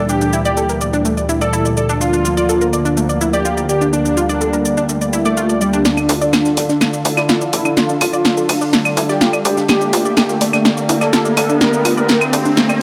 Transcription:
Already playing: D2 A#2 E3 G3
0.09 D4 G4, shaker
0.21 D4, shaker
0.33 E4, shaker
0.45 G4 D5, shaker
0.57 A4, shaker
0.69 A#4, shaker
0.81 D5, shaker
0.93 D4, shaker
1.05 A3, shaker
1.17 D5, shaker
1.29 E4, shaker
1.41 A4 D5, shaker
1.53 E4, shaker
1.65 D5, shaker
1.77 A4 D5, shaker
1.89 D4, shaker
2.01 D3 F3 A#3 D4 F4, shaker
2.13 D4, shaker
2.25 F4, shaker
2.37 F4 D5, shaker
2.49 A4, shaker
2.61 A#4, shaker
2.73 D5, shaker
2.85 D4, shaker
2.97 A3, shaker
3.09 D5, shaker
3.21 E4, shaker
3.33 G4 D5, shaker
3.45 F4, shaker
3.57 D5, shaker
3.69 G4 D5, shaker
3.81 D4, shaker
3.93 G3 D4, shaker
4.05 D4, shaker
4.17 F4, shaker
4.29 D4 D5, shaker
4.41 A4, shaker
4.53 A#4, shaker
4.65 D5, shaker
4.77 D4, shaker
4.89 A3, shaker
5.01 D5, shaker
5.13 E4, shaker
5.25 A3 D5, shaker
5.37 F4, shaker
5.49 D5, shaker
5.61 G3 D5, shaker
5.73 D4, shaker
5.85 D3 D4 F4 A4, snare, ride, riser, shaker
5.97 D4, ride, claves, shaker
6.09 D2 F4, snare, open hi-hat, ride, shaker
6.21 D4 D5, shaker
6.33 A4, snare, ride, claves, shaker
6.45 A4, snare, shaker
6.57 D1 D5, snare, open hi-hat, ride, shaker
6.69 D4, snare, shaker
6.81 A3, snare, ride, claves, shaker
6.93 D5, ride, shaker
7.05 D2 E4, open hi-hat, ride, shaker
7.17 E4 D5, snare, claves, shaker
7.29 F4, snare, ride, shaker
7.41 D5, ride, shaker
7.53 A1 E4 D5, open hi-hat, ride, shaker
7.65 D4, claves, shaker
7.77 D4 F4, snare, ride, shaker
7.89 D4, shaker
8.01 D1 F4, snare, open hi-hat, ride, claves, shaker
8.13 F4 D5, shaker
8.25 A4, snare, ride, shaker
8.37 A4, shaker
8.49 D2 D5, open hi-hat, claves, shaker
8.61 D4, shaker
8.73 A3, snare, ride, shaker
8.85 D5, claves, shaker
8.96 D2 E4, snare, open hi-hat, ride, shaker
9.09 G4 D5, snare, shaker
9.21 F4, snare, ride, shaker
9.33 D5, claves, shaker
9.45 D2 G4 D5, open hi-hat, ride, shaker
9.57 D4, snare, shaker
9.68 A3 A#3 D4 G4, snare, ride, claves, shaker
9.81 D4, ride, shaker
9.93 D2 F4, snare, open hi-hat, ride, shaker
10.05 G4 D5, shaker
10.17 A4, snare, ride, claves, shaker
10.29 A#4, snare, shaker
10.41 D1 D5, snare, open hi-hat, ride, shaker
10.53 D4, snare, claves, shaker
10.65 A3, snare, ride, shaker
10.77 D5, ride, shaker
10.89 D2 E4, open hi-hat, ride, shaker
11.01 A4 D5, snare, claves, shaker
11.13 F4, snare, ride, shaker
11.25 D5, ride, shaker
11.37 A1 A4 D5, snare, open hi-hat, ride, claves, shaker
11.49 D4, shaker
11.61 D4 A#4, snare, ride, shaker
11.73 D4, shaker
11.85 D1 F4, snare, open hi-hat, ride, claves, shaker
11.97 A#4 D5, shaker
12.08 A4, snare, ride, shaker
12.21 A#4, claves, shaker
12.33 D2 D5, open hi-hat, shaker
12.45 D4, shaker
12.57 A3, snare, ride, shaker
12.69 D5, claves, shaker

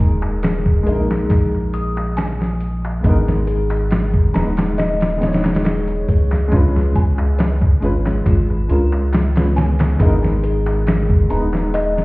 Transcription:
Already playing: D#1 G#3 A#3 D#4 A#4 G#5
0.00 kick, closed hi-hat
0.22 darbuka tek
0.43 G#4, snare, closed hi-hat, darbuka tek
0.66 kick, darbuka tek
0.83 G#3 A#3 G#4, closed hi-hat
0.88 A#1 D#4
0.92 A#4
1.11 snare, darbuka tek
1.30 A#1, kick, closed hi-hat, darbuka tek
1.54 darbuka tek
1.73 D#6, closed hi-hat
1.97 darbuka tek
2.17 G#5, snare, closed hi-hat, darbuka tek
2.40 snare, darbuka tek
2.60 closed hi-hat
2.85 darbuka tek
3.00 G#3 B3 G#4, kick, closed hi-hat
3.04 G#1 D#4, darbuka tek
3.09 A#4
3.27 snare, darbuka tek
3.47 G#4, closed hi-hat
3.70 closed hi-hat, darbuka tek
3.91 snare, closed hi-hat, darbuka tek
4.14 kick, darbuka tek
4.33 D#1 G#3 B3 D#4 A#5, snare, closed hi-hat
4.37 B4
4.57 snare, closed hi-hat, darbuka tek
4.78 D#5, snare, closed hi-hat, darbuka tek
5.01 snare, closed hi-hat, darbuka tek
5.18 G#3 B3, closed hi-hat
5.23 D#4 C#5, snare
5.33 snare, closed hi-hat
5.44 snare, closed hi-hat, darbuka tek
5.55 snare, closed hi-hat
5.65 G#4, snare, closed hi-hat, darbuka tek
5.88 closed hi-hat, darbuka tek
6.08 C#2 G#4, kick, closed hi-hat
6.31 snare, darbuka tek
6.48 G#3 C#4, closed hi-hat
6.52 F4, kick, darbuka tek
6.56 B4
6.76 snare, darbuka tek
6.95 G#5, kick, closed hi-hat
7.18 darbuka tek
7.39 C#5, snare, closed hi-hat, darbuka tek
7.62 kick, darbuka tek
7.80 G#1 G#3 C#4 F4, closed hi-hat
7.84 B4
8.05 snare, darbuka tek
8.26 G#1 F4, kick, closed hi-hat, darbuka tek
8.50 darbuka tek
8.68 C#2 G#3 C#4 F4, closed hi-hat
8.72 A#4
8.92 darbuka tek
9.13 snare, closed hi-hat, darbuka tek
9.35 G#3 C#4 F4, snare, closed hi-hat, darbuka tek
9.39 B4
9.56 G#5, snare, closed hi-hat
9.79 snare, closed hi-hat, darbuka tek
9.97 G#1 G#3 B3 G#4, kick, closed hi-hat, darbuka tek
10.02 D#4 A#4
10.23 snare, darbuka tek
10.43 G#4, closed hi-hat
10.66 closed hi-hat, darbuka tek
10.87 snare, closed hi-hat, darbuka tek
11.10 kick, darbuka tek
11.29 D#1 G#3 B3 D#4 A#5, closed hi-hat
11.33 B4
11.53 snare, darbuka tek
11.74 D#5, closed hi-hat, darbuka tek
11.97 snare, darbuka tek

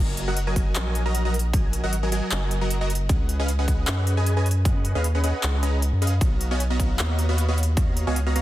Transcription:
Already playing: F#1 F#3 F#4 A#4 D#5 G#5
0.17 closed hi-hat
0.28 F#3 F#4 A#4 D#5 F#5
0.37 closed hi-hat
0.47 F#3 F#4 A#4 D#5 G#5
0.56 kick, closed hi-hat
0.76 A#1, clap, closed hi-hat
0.95 closed hi-hat
1.06 F#3 F#4 A#4 D#5 A#5
1.15 closed hi-hat
1.25 F#3 F#4 A#4 D#5 A#5
1.34 closed hi-hat
1.39 closed hi-hat
1.53 F#3 F#4 A#4 D#5 G#5, kick, closed hi-hat
1.73 closed hi-hat
1.84 G#1 F#3 F#4 A#4 D#5 F#5
1.93 closed hi-hat
2.03 F#3 F#4 A#4 D#5 G#5
2.12 F#3 F#4 A#4 D#5 G#5, closed hi-hat
2.31 F#1, clap, closed hi-hat
2.51 closed hi-hat
2.61 F#3 F#4 A#4 D#5 A#5
2.71 closed hi-hat
2.81 F#3 F#4 A#4 D#5 A#5
2.90 closed hi-hat
2.95 closed hi-hat
3.09 C#2 C#4 G#4 B4 D#5 F#5, kick, closed hi-hat
3.29 closed hi-hat
3.40 C#4 G#4 B4 D#5 F5
3.48 closed hi-hat
3.59 C#4 G#4 B4 D#5 F#5
3.68 C#4 G#4 B4 D#5 F#5, kick, closed hi-hat
3.87 F#2, clap, closed hi-hat
4.07 closed hi-hat
4.17 C#4 G#4 B4 D#5 G#5
4.26 closed hi-hat
4.37 C#4 G#4 B4 D#5 G#5
4.46 closed hi-hat
4.51 closed hi-hat
4.65 C#4 G#4 B4 D#5 F#5, kick, closed hi-hat
4.85 closed hi-hat
4.95 D#2 C#4 G#4 B4 D#5 F5
5.04 closed hi-hat
5.15 C#4 G#4 B4 D#5 F#5
5.24 C#4 G#4 B4 D#5 F#5, closed hi-hat
5.43 C#2, clap, closed hi-hat
5.63 C#4 G#4 B4 D#5 A#5, closed hi-hat
5.82 closed hi-hat
5.93 F#2
6.02 C#4 G#4 B4 D#5 F5, closed hi-hat
6.07 closed hi-hat
6.21 B1 B3 F#4 C#5 D#5 F5 A#5, kick, closed hi-hat
6.41 closed hi-hat
6.51 B3 F#4 C#5 D#5 F5 G#5
6.60 closed hi-hat
6.70 B3 F#4 C#5 D#5 F5 A#5
6.80 B3 F#4 C#5 D#5 F5 A#5, kick, closed hi-hat
6.99 D#2, clap, closed hi-hat
7.19 closed hi-hat
7.29 B3 F#4 C#5 D#5 F5 B5
7.38 closed hi-hat
7.49 B3 F#4 C#5 D#5 F5 B5
7.58 closed hi-hat
7.63 closed hi-hat
7.77 B3 F#4 C#5 D#5 F5 A#5, kick, closed hi-hat
7.97 closed hi-hat
8.07 C#2 B3 F#4 C#5 D#5 F5 G#5
8.16 closed hi-hat
8.26 B3 F#4 C#5 D#5 F5 A#5
8.36 B3 F#4 C#5 D#5 F5 A#5, closed hi-hat

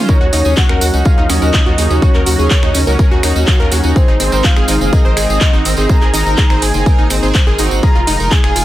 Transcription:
0.08 C#3 F#3 A#3 C#4 D#4 F#4 A#4 C#5, kick, tambourine
0.21 D#2 F#4
0.33 D#2 C#4 D#4 F#4, open hi-hat, tambourine
0.45 D#2 C#4 D#4 G#4, tambourine
0.57 F#4 F#5, kick, clap, tambourine
0.69 D#2 C#4 D#4 F#4 A#4, finger snap
0.81 D#2 F#4, open hi-hat, tambourine
0.93 C#2 C#4 D#4 F#4, tambourine
1.05 C#4 D#4 G#4 F5, kick, tambourine
1.18 D#2 D#4
1.29 D#2 C#4 D#4 F#4 D#5, finger snap, open hi-hat, tambourine
1.42 D#2 C#4 D#4 F#4 A#4, tambourine
1.54 C#4 D#4 A#4, kick, clap, tambourine
1.66 D#2 F#4
1.78 D#2 C#4 D#4 G#4, open hi-hat, tambourine
1.90 D#2 C#4 D#4 F#4, tambourine
2.02 C#4 D#4 F#4 C#5, kick, tambourine
2.14 D#2 A#4, clap
2.26 D#2 C#4 D#4 F#4, open hi-hat, tambourine
2.39 D#2 C#4 D#4 G#4, tambourine
2.50 kick, clap, tambourine
2.63 D#2 C#4 D#4 F#4, finger snap
2.74 D#2 C#4, open hi-hat, tambourine
2.87 C#2 C#4 D#4 F#4 A#4, tambourine
2.99 C#4 G#4 A#4, kick, tambourine
3.11 D#2 F#4
3.23 D#2 C#4 D#4 F#4, finger snap, open hi-hat, tambourine
3.36 D#2 C#4 D#4 F#4, tambourine
3.47 C#4 D#4 F4 F#4, kick, clap, tambourine
3.60 D#2 A#4
3.72 D#2 C#4 D#4 F#4 G#4, open hi-hat, tambourine
3.83 D#2 C#4 D#4 F#4, tambourine
3.96 D#3 G#3 C4 D#4 G#4 C5, kick, tambourine
4.08 G#1 D#4
4.20 G#1 C4 D#4 G#4, open hi-hat, tambourine
4.32 G#1 C4 D#4 A#4 C5, tambourine
4.44 C5 F5, kick, clap, tambourine
4.56 G#1 C4 D#4 G#4, finger snap
4.68 G#1 D#4, open hi-hat, tambourine
4.81 F#1 C4 D#4 G#4, tambourine
4.93 C4 D#4 G#4 A#4 D#5, kick, tambourine
5.05 G#1 C5
5.17 G#1 C4 D#4 G#4, finger snap, open hi-hat, tambourine
5.29 G#1 C4 D#4 G#4, tambourine
5.41 C4 D#4 F#4, kick, clap, tambourine
5.53 G#1 D#4
5.65 G#1 C4 D#4 A#4, open hi-hat, tambourine
5.77 G#1 C4 D#4 G#4 C5, tambourine
5.89 A#3 C4 D#4 G#4 C5 A#5, kick, tambourine
6.01 G#1 G#4, clap
6.13 G#1 C4 D#4 G#4, open hi-hat, tambourine
6.26 G#1 C4 D#4 A#4, tambourine
6.38 G#4, kick, clap, tambourine
6.50 G#1 C4 D#4 G#4 C5, finger snap
6.62 G#1 G#4 G#5, open hi-hat, tambourine
6.74 F#1 C4 D#4 G#4, tambourine
6.86 C4 D#4 A#4, kick, tambourine
6.98 G#1 D#4
7.10 G#1 C4 D#4 G#4, finger snap, open hi-hat, tambourine
7.23 G#1 C4 D#4 G#4 C5, tambourine
7.35 C5, kick, clap, tambourine
7.47 G#1 C4 D#4 G#4 A#4
7.58 G#1 C4 D#4 F#4, open hi-hat, tambourine
7.71 G#1, tambourine
7.83 F3 G#3 D#4 F4 G#4 A#5, kick, tambourine
7.95 F1 F4
8.07 F1 D#4 F4 G#4, open hi-hat, tambourine
8.20 F1 D#4 F4 A#4, tambourine
8.31 G#4 G#5, kick, clap, tambourine
8.44 F1 D#4 F4 G#4, finger snap
8.56 F1 F4, open hi-hat, tambourine

